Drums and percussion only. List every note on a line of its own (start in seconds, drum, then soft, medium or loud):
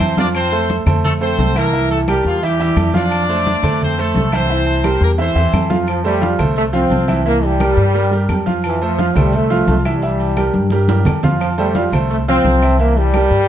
0.00 high conga medium
0.00 low agogo loud
0.00 claves medium
0.00 maracas medium
0.17 high conga medium
0.17 low timbale loud
0.17 maracas soft
0.35 high conga soft
0.35 low agogo loud
0.35 claves medium
0.35 maracas medium
0.52 high conga soft
0.52 low agogo medium
0.52 maracas soft
0.70 high conga loud
0.70 low timbale medium
0.70 maracas medium
0.87 high conga soft
0.87 low conga loud
0.87 low agogo loud
0.87 claves medium
0.87 maracas soft
1.04 high conga soft
1.04 low conga medium
1.04 low agogo medium
1.04 maracas medium
1.21 high conga soft
1.21 maracas soft
1.39 high conga medium
1.39 low timbale medium
1.39 low agogo medium
1.39 maracas medium
1.56 low agogo loud
1.56 claves medium
1.56 maracas soft
1.74 maracas medium
1.90 high conga soft
1.90 low agogo loud
1.90 maracas soft
2.08 high conga loud
2.08 low timbale medium
2.08 low agogo loud
2.08 claves medium
2.08 maracas medium
2.25 high conga soft
2.25 maracas soft
2.42 high conga soft
2.42 low agogo medium
2.42 maracas medium
2.60 high conga soft
2.60 low agogo medium
2.60 maracas soft
2.77 high conga loud
2.77 low timbale medium
2.77 low agogo loud
2.77 claves medium
2.77 maracas medium
2.94 high conga medium
2.94 maracas soft
3.11 low agogo loud
3.11 claves medium
3.11 maracas medium
3.28 high conga soft
3.28 low agogo medium
3.28 maracas soft
3.46 high conga loud
3.46 low timbale medium
3.46 maracas medium
3.63 high conga soft
3.63 low conga medium
3.63 low agogo loud
3.63 claves medium
3.63 maracas soft
3.80 high conga soft
3.80 low conga medium
3.80 low agogo medium
3.80 maracas medium
3.97 high conga soft
3.97 maracas soft
4.15 high conga medium
4.15 low timbale medium
4.15 low agogo medium
4.15 maracas medium
4.32 high conga medium
4.32 low agogo loud
4.32 claves medium
4.32 maracas soft
4.49 maracas medium
4.66 high conga soft
4.66 low agogo loud
4.66 maracas soft
4.84 high conga loud
4.84 high timbale medium
4.84 low agogo loud
4.84 claves medium
4.84 maracas medium
5.01 high conga soft
5.01 maracas soft
5.18 high conga soft
5.18 low timbale medium
5.18 low agogo medium
5.18 maracas medium
5.35 high conga soft
5.35 low timbale medium
5.35 low agogo medium
5.35 maracas soft
5.52 high conga medium
5.52 low timbale loud
5.52 low agogo loud
5.52 claves medium
5.52 maracas medium
5.70 high conga medium
5.70 low timbale medium
5.70 maracas soft
5.87 low agogo loud
5.87 claves medium
5.87 maracas medium
6.05 high conga soft
6.05 low agogo medium
6.05 maracas soft
6.21 high conga loud
6.21 low timbale medium
6.21 maracas medium
6.39 high conga soft
6.39 low conga medium
6.39 low agogo loud
6.39 claves medium
6.39 maracas soft
6.56 high conga soft
6.56 low agogo medium
6.56 maracas medium
6.74 high conga soft
6.74 maracas soft
6.91 high conga medium
6.91 low timbale medium
6.91 low agogo medium
6.91 maracas medium
7.08 high conga medium
7.08 low agogo loud
7.08 claves medium
7.08 maracas soft
7.26 maracas medium
7.43 high conga soft
7.43 low agogo loud
7.43 maracas soft
7.60 high conga loud
7.60 low timbale medium
7.60 low agogo loud
7.60 claves medium
7.60 maracas medium
7.78 high conga soft
7.78 maracas soft
7.94 low agogo medium
7.94 maracas medium
8.12 high conga soft
8.12 low agogo medium
8.12 maracas soft
8.29 high conga medium
8.29 low timbale medium
8.29 low agogo loud
8.29 claves medium
8.29 maracas medium
8.47 high conga medium
8.47 maracas soft
8.64 low agogo loud
8.64 claves medium
8.64 maracas medium
8.81 high conga soft
8.81 low agogo medium
8.81 maracas soft
8.98 high conga medium
8.98 low timbale medium
8.98 maracas medium
9.16 high conga soft
9.16 low conga medium
9.16 low agogo loud
9.16 claves medium
9.16 maracas soft
9.32 high conga soft
9.32 low conga medium
9.32 low agogo medium
9.32 maracas medium
9.50 high conga soft
9.50 maracas soft
9.67 high conga medium
9.67 low timbale medium
9.67 low agogo medium
9.67 maracas medium
9.85 low agogo loud
9.85 claves medium
9.85 maracas soft
10.02 high conga soft
10.02 maracas medium
10.20 high conga soft
10.20 low agogo medium
10.20 maracas soft
10.37 high conga loud
10.37 low timbale medium
10.37 low agogo loud
10.37 claves medium
10.37 maracas medium
10.54 high conga medium
10.54 maracas soft
10.70 high conga medium
10.70 high timbale medium
10.70 low agogo medium
10.70 maracas medium
10.88 high conga medium
10.88 high timbale loud
10.88 low agogo medium
10.88 maracas soft
11.05 low conga loud
11.05 low timbale loud
11.05 low agogo loud
11.05 claves medium
11.05 maracas medium
11.23 low conga loud
11.23 low timbale medium
11.23 maracas soft
11.41 high conga soft
11.41 low agogo loud
11.41 claves medium
11.41 maracas medium
11.58 high conga soft
11.58 low agogo medium
11.58 maracas soft
11.75 high conga loud
11.75 low timbale medium
11.75 maracas medium
11.92 high conga soft
11.92 low conga medium
11.92 low agogo loud
11.92 claves medium
11.92 maracas soft
12.09 high conga soft
12.09 low agogo medium
12.09 maracas medium
12.27 high conga soft
12.27 maracas soft
12.45 high conga medium
12.45 low timbale medium
12.45 low agogo medium
12.45 maracas medium
12.62 low agogo loud
12.62 claves medium
12.62 maracas soft
12.79 high conga soft
12.79 maracas medium
12.96 high conga soft
12.96 low agogo medium
12.96 maracas soft
13.13 high conga loud
13.13 low timbale medium
13.13 low agogo loud
13.13 claves medium
13.13 maracas medium
13.31 high conga soft
13.31 maracas soft